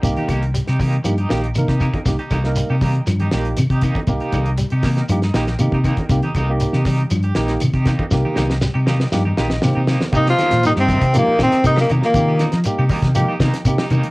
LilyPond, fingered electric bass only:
\new Staff \with { instrumentName = "Fingered electric bass" } { \clef bass \time 4/4 \key c \minor \tempo 4 = 119 c,16 r16 c,8. c8. g,8 bes,,8 c16 c8 r16 | c,16 r16 c,8. c8. g,8 bes,,8 c16 c8 r16 | c,16 r16 c,8. c8. g,8 bes,,8 c16 c8 r16 | c,16 r16 c,8. c8. g,8 bes,,8 c16 c8 r16 |
c,16 r16 c,8. c8. g,8 bes,,8 c16 c8 r16 | c8 r16 bes,8 g,8 c8 r16 bes,16 r16 c8 c16 r16 | ees8. f16 r16 c16 r16 c8 r16 c16 r16 c16 r16 c16 r16 | }